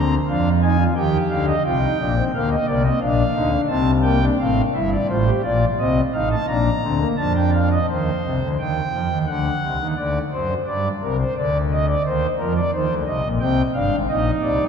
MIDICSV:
0, 0, Header, 1, 2, 480
1, 0, Start_track
1, 0, Tempo, 691244
1, 1619, Time_signature, 4, 2, 24, 8
1, 10197, End_track
2, 0, Start_track
2, 0, Title_t, "Pipe organ"
2, 0, Program_c, 0, 19
2, 0, Note_on_c, 0, 38, 65
2, 0, Note_on_c, 0, 50, 68
2, 0, Note_on_c, 0, 60, 65
2, 0, Note_on_c, 0, 82, 80
2, 105, Note_off_c, 0, 60, 0
2, 105, Note_off_c, 0, 82, 0
2, 129, Note_off_c, 0, 38, 0
2, 129, Note_off_c, 0, 50, 0
2, 191, Note_on_c, 0, 41, 66
2, 194, Note_on_c, 0, 77, 80
2, 195, Note_on_c, 0, 53, 69
2, 195, Note_on_c, 0, 62, 67
2, 341, Note_off_c, 0, 77, 0
2, 342, Note_off_c, 0, 62, 0
2, 431, Note_on_c, 0, 63, 72
2, 434, Note_on_c, 0, 80, 86
2, 533, Note_off_c, 0, 63, 0
2, 550, Note_on_c, 0, 65, 75
2, 581, Note_off_c, 0, 80, 0
2, 601, Note_off_c, 0, 41, 0
2, 604, Note_off_c, 0, 53, 0
2, 652, Note_off_c, 0, 65, 0
2, 666, Note_on_c, 0, 79, 88
2, 667, Note_on_c, 0, 39, 80
2, 668, Note_on_c, 0, 51, 74
2, 668, Note_on_c, 0, 67, 75
2, 814, Note_off_c, 0, 79, 0
2, 815, Note_off_c, 0, 39, 0
2, 816, Note_off_c, 0, 51, 0
2, 908, Note_on_c, 0, 38, 77
2, 909, Note_on_c, 0, 77, 92
2, 911, Note_on_c, 0, 50, 74
2, 1010, Note_off_c, 0, 77, 0
2, 1028, Note_on_c, 0, 75, 82
2, 1055, Note_off_c, 0, 38, 0
2, 1057, Note_off_c, 0, 50, 0
2, 1077, Note_off_c, 0, 67, 0
2, 1128, Note_off_c, 0, 75, 0
2, 1148, Note_on_c, 0, 65, 78
2, 1149, Note_on_c, 0, 48, 71
2, 1151, Note_on_c, 0, 36, 69
2, 1153, Note_on_c, 0, 79, 86
2, 1248, Note_off_c, 0, 65, 0
2, 1276, Note_on_c, 0, 63, 67
2, 1295, Note_off_c, 0, 48, 0
2, 1296, Note_off_c, 0, 36, 0
2, 1372, Note_off_c, 0, 63, 0
2, 1388, Note_on_c, 0, 46, 66
2, 1391, Note_on_c, 0, 34, 72
2, 1393, Note_on_c, 0, 62, 69
2, 1490, Note_off_c, 0, 62, 0
2, 1506, Note_on_c, 0, 60, 70
2, 1533, Note_off_c, 0, 46, 0
2, 1536, Note_off_c, 0, 34, 0
2, 1558, Note_off_c, 0, 79, 0
2, 1606, Note_off_c, 0, 60, 0
2, 1632, Note_on_c, 0, 38, 74
2, 1632, Note_on_c, 0, 58, 64
2, 1633, Note_on_c, 0, 50, 73
2, 1633, Note_on_c, 0, 77, 75
2, 1730, Note_off_c, 0, 77, 0
2, 1748, Note_on_c, 0, 75, 72
2, 1776, Note_off_c, 0, 38, 0
2, 1776, Note_off_c, 0, 58, 0
2, 1777, Note_off_c, 0, 50, 0
2, 1846, Note_off_c, 0, 75, 0
2, 1856, Note_on_c, 0, 74, 73
2, 1857, Note_on_c, 0, 36, 70
2, 1857, Note_on_c, 0, 48, 69
2, 1858, Note_on_c, 0, 58, 80
2, 1960, Note_off_c, 0, 74, 0
2, 1961, Note_off_c, 0, 58, 0
2, 1970, Note_on_c, 0, 60, 82
2, 1974, Note_on_c, 0, 75, 74
2, 2005, Note_off_c, 0, 48, 0
2, 2006, Note_off_c, 0, 36, 0
2, 2076, Note_off_c, 0, 60, 0
2, 2078, Note_off_c, 0, 75, 0
2, 2089, Note_on_c, 0, 62, 85
2, 2095, Note_on_c, 0, 34, 67
2, 2095, Note_on_c, 0, 46, 69
2, 2095, Note_on_c, 0, 77, 75
2, 2240, Note_off_c, 0, 62, 0
2, 2243, Note_off_c, 0, 34, 0
2, 2243, Note_off_c, 0, 46, 0
2, 2324, Note_on_c, 0, 50, 77
2, 2327, Note_on_c, 0, 38, 80
2, 2327, Note_on_c, 0, 63, 93
2, 2433, Note_off_c, 0, 63, 0
2, 2445, Note_on_c, 0, 62, 86
2, 2476, Note_off_c, 0, 50, 0
2, 2477, Note_off_c, 0, 38, 0
2, 2506, Note_off_c, 0, 77, 0
2, 2552, Note_off_c, 0, 62, 0
2, 2562, Note_on_c, 0, 81, 77
2, 2564, Note_on_c, 0, 36, 80
2, 2564, Note_on_c, 0, 60, 83
2, 2568, Note_on_c, 0, 48, 74
2, 2714, Note_off_c, 0, 81, 0
2, 2715, Note_off_c, 0, 60, 0
2, 2797, Note_on_c, 0, 79, 76
2, 2801, Note_on_c, 0, 58, 89
2, 2910, Note_off_c, 0, 58, 0
2, 2924, Note_on_c, 0, 62, 80
2, 2951, Note_off_c, 0, 79, 0
2, 2981, Note_off_c, 0, 36, 0
2, 2983, Note_off_c, 0, 48, 0
2, 3031, Note_off_c, 0, 62, 0
2, 3053, Note_on_c, 0, 60, 86
2, 3054, Note_on_c, 0, 33, 67
2, 3054, Note_on_c, 0, 45, 67
2, 3056, Note_on_c, 0, 77, 70
2, 3203, Note_off_c, 0, 60, 0
2, 3204, Note_off_c, 0, 33, 0
2, 3204, Note_off_c, 0, 45, 0
2, 3206, Note_off_c, 0, 77, 0
2, 3294, Note_on_c, 0, 64, 77
2, 3296, Note_on_c, 0, 76, 66
2, 3298, Note_on_c, 0, 31, 67
2, 3299, Note_on_c, 0, 43, 61
2, 3400, Note_off_c, 0, 76, 0
2, 3419, Note_on_c, 0, 74, 72
2, 3445, Note_off_c, 0, 64, 0
2, 3447, Note_off_c, 0, 31, 0
2, 3448, Note_off_c, 0, 43, 0
2, 3522, Note_off_c, 0, 74, 0
2, 3529, Note_on_c, 0, 45, 65
2, 3532, Note_on_c, 0, 72, 64
2, 3533, Note_on_c, 0, 33, 65
2, 3534, Note_on_c, 0, 65, 81
2, 3639, Note_off_c, 0, 65, 0
2, 3655, Note_on_c, 0, 67, 80
2, 3682, Note_off_c, 0, 45, 0
2, 3683, Note_off_c, 0, 72, 0
2, 3684, Note_off_c, 0, 33, 0
2, 3760, Note_off_c, 0, 67, 0
2, 3772, Note_on_c, 0, 34, 58
2, 3773, Note_on_c, 0, 65, 78
2, 3774, Note_on_c, 0, 46, 59
2, 3775, Note_on_c, 0, 74, 64
2, 3923, Note_off_c, 0, 34, 0
2, 3924, Note_off_c, 0, 65, 0
2, 3925, Note_off_c, 0, 46, 0
2, 3926, Note_off_c, 0, 74, 0
2, 4024, Note_on_c, 0, 36, 64
2, 4024, Note_on_c, 0, 48, 65
2, 4024, Note_on_c, 0, 75, 66
2, 4025, Note_on_c, 0, 60, 80
2, 4171, Note_off_c, 0, 36, 0
2, 4172, Note_off_c, 0, 48, 0
2, 4172, Note_off_c, 0, 60, 0
2, 4172, Note_off_c, 0, 75, 0
2, 4260, Note_on_c, 0, 33, 63
2, 4261, Note_on_c, 0, 45, 67
2, 4262, Note_on_c, 0, 63, 80
2, 4263, Note_on_c, 0, 77, 70
2, 4365, Note_off_c, 0, 77, 0
2, 4382, Note_on_c, 0, 81, 66
2, 4409, Note_off_c, 0, 33, 0
2, 4410, Note_off_c, 0, 45, 0
2, 4411, Note_off_c, 0, 63, 0
2, 4485, Note_off_c, 0, 81, 0
2, 4497, Note_on_c, 0, 34, 65
2, 4497, Note_on_c, 0, 46, 61
2, 4500, Note_on_c, 0, 62, 81
2, 4500, Note_on_c, 0, 82, 69
2, 4648, Note_off_c, 0, 34, 0
2, 4648, Note_off_c, 0, 46, 0
2, 4650, Note_off_c, 0, 62, 0
2, 4740, Note_on_c, 0, 50, 64
2, 4743, Note_on_c, 0, 38, 63
2, 4744, Note_on_c, 0, 60, 77
2, 4847, Note_off_c, 0, 60, 0
2, 4864, Note_on_c, 0, 58, 70
2, 4891, Note_off_c, 0, 50, 0
2, 4893, Note_off_c, 0, 38, 0
2, 4916, Note_off_c, 0, 82, 0
2, 4968, Note_off_c, 0, 58, 0
2, 4982, Note_on_c, 0, 81, 58
2, 4983, Note_on_c, 0, 62, 71
2, 4985, Note_on_c, 0, 41, 63
2, 4988, Note_on_c, 0, 53, 60
2, 5087, Note_off_c, 0, 81, 0
2, 5109, Note_on_c, 0, 79, 61
2, 5212, Note_off_c, 0, 79, 0
2, 5236, Note_on_c, 0, 77, 57
2, 5337, Note_off_c, 0, 77, 0
2, 5357, Note_on_c, 0, 75, 60
2, 5402, Note_off_c, 0, 62, 0
2, 5404, Note_off_c, 0, 41, 0
2, 5405, Note_off_c, 0, 53, 0
2, 5458, Note_off_c, 0, 75, 0
2, 5482, Note_on_c, 0, 72, 58
2, 5483, Note_on_c, 0, 39, 65
2, 5488, Note_on_c, 0, 51, 67
2, 5630, Note_off_c, 0, 39, 0
2, 5633, Note_off_c, 0, 51, 0
2, 5727, Note_on_c, 0, 36, 56
2, 5732, Note_on_c, 0, 48, 64
2, 5826, Note_off_c, 0, 36, 0
2, 5828, Note_off_c, 0, 48, 0
2, 5848, Note_on_c, 0, 38, 62
2, 5848, Note_on_c, 0, 50, 58
2, 5894, Note_off_c, 0, 72, 0
2, 5946, Note_off_c, 0, 38, 0
2, 5947, Note_off_c, 0, 50, 0
2, 5965, Note_on_c, 0, 39, 60
2, 5966, Note_on_c, 0, 79, 54
2, 5972, Note_on_c, 0, 51, 63
2, 6112, Note_off_c, 0, 39, 0
2, 6117, Note_off_c, 0, 51, 0
2, 6206, Note_on_c, 0, 53, 68
2, 6208, Note_on_c, 0, 41, 68
2, 6306, Note_off_c, 0, 53, 0
2, 6307, Note_off_c, 0, 41, 0
2, 6321, Note_on_c, 0, 39, 65
2, 6322, Note_on_c, 0, 51, 70
2, 6378, Note_off_c, 0, 79, 0
2, 6424, Note_off_c, 0, 39, 0
2, 6424, Note_off_c, 0, 51, 0
2, 6439, Note_on_c, 0, 78, 66
2, 6444, Note_on_c, 0, 50, 71
2, 6445, Note_on_c, 0, 38, 73
2, 6593, Note_off_c, 0, 38, 0
2, 6593, Note_off_c, 0, 50, 0
2, 6687, Note_on_c, 0, 36, 74
2, 6688, Note_on_c, 0, 48, 69
2, 6789, Note_off_c, 0, 36, 0
2, 6789, Note_off_c, 0, 48, 0
2, 6804, Note_on_c, 0, 51, 68
2, 6807, Note_on_c, 0, 39, 65
2, 6856, Note_off_c, 0, 78, 0
2, 6907, Note_off_c, 0, 51, 0
2, 6909, Note_off_c, 0, 39, 0
2, 6924, Note_on_c, 0, 74, 62
2, 6925, Note_on_c, 0, 38, 71
2, 6928, Note_on_c, 0, 50, 68
2, 7074, Note_off_c, 0, 38, 0
2, 7074, Note_off_c, 0, 74, 0
2, 7076, Note_off_c, 0, 50, 0
2, 7172, Note_on_c, 0, 54, 65
2, 7173, Note_on_c, 0, 72, 58
2, 7175, Note_on_c, 0, 42, 69
2, 7319, Note_off_c, 0, 54, 0
2, 7319, Note_off_c, 0, 72, 0
2, 7321, Note_off_c, 0, 42, 0
2, 7411, Note_on_c, 0, 74, 75
2, 7412, Note_on_c, 0, 43, 68
2, 7413, Note_on_c, 0, 55, 66
2, 7558, Note_off_c, 0, 43, 0
2, 7558, Note_off_c, 0, 74, 0
2, 7559, Note_off_c, 0, 55, 0
2, 7656, Note_on_c, 0, 70, 66
2, 7658, Note_on_c, 0, 36, 61
2, 7659, Note_on_c, 0, 48, 65
2, 7754, Note_off_c, 0, 70, 0
2, 7778, Note_on_c, 0, 72, 71
2, 7802, Note_off_c, 0, 36, 0
2, 7803, Note_off_c, 0, 48, 0
2, 7875, Note_off_c, 0, 72, 0
2, 7895, Note_on_c, 0, 50, 68
2, 7896, Note_on_c, 0, 74, 79
2, 7898, Note_on_c, 0, 38, 69
2, 8040, Note_off_c, 0, 74, 0
2, 8138, Note_on_c, 0, 75, 86
2, 8233, Note_off_c, 0, 75, 0
2, 8253, Note_on_c, 0, 74, 78
2, 8300, Note_off_c, 0, 50, 0
2, 8302, Note_off_c, 0, 38, 0
2, 8350, Note_off_c, 0, 74, 0
2, 8376, Note_on_c, 0, 72, 86
2, 8377, Note_on_c, 0, 39, 78
2, 8378, Note_on_c, 0, 51, 75
2, 8519, Note_off_c, 0, 72, 0
2, 8520, Note_off_c, 0, 39, 0
2, 8521, Note_off_c, 0, 51, 0
2, 8601, Note_on_c, 0, 41, 72
2, 8602, Note_on_c, 0, 70, 86
2, 8608, Note_on_c, 0, 53, 80
2, 8703, Note_off_c, 0, 70, 0
2, 8727, Note_on_c, 0, 74, 82
2, 8748, Note_off_c, 0, 41, 0
2, 8753, Note_off_c, 0, 53, 0
2, 8826, Note_off_c, 0, 74, 0
2, 8841, Note_on_c, 0, 39, 72
2, 8842, Note_on_c, 0, 51, 69
2, 8843, Note_on_c, 0, 72, 81
2, 8941, Note_off_c, 0, 39, 0
2, 8942, Note_off_c, 0, 51, 0
2, 8952, Note_on_c, 0, 38, 68
2, 8954, Note_on_c, 0, 50, 69
2, 8988, Note_off_c, 0, 72, 0
2, 9056, Note_off_c, 0, 38, 0
2, 9057, Note_off_c, 0, 50, 0
2, 9071, Note_on_c, 0, 48, 67
2, 9073, Note_on_c, 0, 75, 78
2, 9074, Note_on_c, 0, 36, 65
2, 9175, Note_off_c, 0, 48, 0
2, 9176, Note_off_c, 0, 36, 0
2, 9194, Note_on_c, 0, 34, 67
2, 9197, Note_on_c, 0, 46, 69
2, 9221, Note_off_c, 0, 75, 0
2, 9296, Note_off_c, 0, 34, 0
2, 9298, Note_off_c, 0, 46, 0
2, 9305, Note_on_c, 0, 48, 82
2, 9308, Note_on_c, 0, 79, 71
2, 9309, Note_on_c, 0, 36, 81
2, 9309, Note_on_c, 0, 60, 74
2, 9456, Note_off_c, 0, 48, 0
2, 9457, Note_off_c, 0, 79, 0
2, 9458, Note_off_c, 0, 36, 0
2, 9458, Note_off_c, 0, 60, 0
2, 9543, Note_on_c, 0, 77, 62
2, 9544, Note_on_c, 0, 31, 74
2, 9545, Note_on_c, 0, 43, 71
2, 9545, Note_on_c, 0, 62, 66
2, 9649, Note_off_c, 0, 31, 0
2, 9650, Note_off_c, 0, 43, 0
2, 9663, Note_on_c, 0, 44, 79
2, 9667, Note_on_c, 0, 32, 76
2, 9694, Note_off_c, 0, 62, 0
2, 9694, Note_off_c, 0, 77, 0
2, 9769, Note_off_c, 0, 44, 0
2, 9771, Note_off_c, 0, 32, 0
2, 9783, Note_on_c, 0, 34, 71
2, 9784, Note_on_c, 0, 63, 69
2, 9785, Note_on_c, 0, 46, 76
2, 9786, Note_on_c, 0, 75, 68
2, 9934, Note_off_c, 0, 34, 0
2, 9935, Note_off_c, 0, 46, 0
2, 9935, Note_off_c, 0, 75, 0
2, 10013, Note_on_c, 0, 74, 71
2, 10016, Note_on_c, 0, 48, 83
2, 10017, Note_on_c, 0, 36, 85
2, 10125, Note_off_c, 0, 48, 0
2, 10126, Note_off_c, 0, 36, 0
2, 10145, Note_on_c, 0, 46, 78
2, 10149, Note_on_c, 0, 34, 76
2, 10167, Note_off_c, 0, 74, 0
2, 10197, Note_off_c, 0, 34, 0
2, 10197, Note_off_c, 0, 46, 0
2, 10197, Note_off_c, 0, 63, 0
2, 10197, End_track
0, 0, End_of_file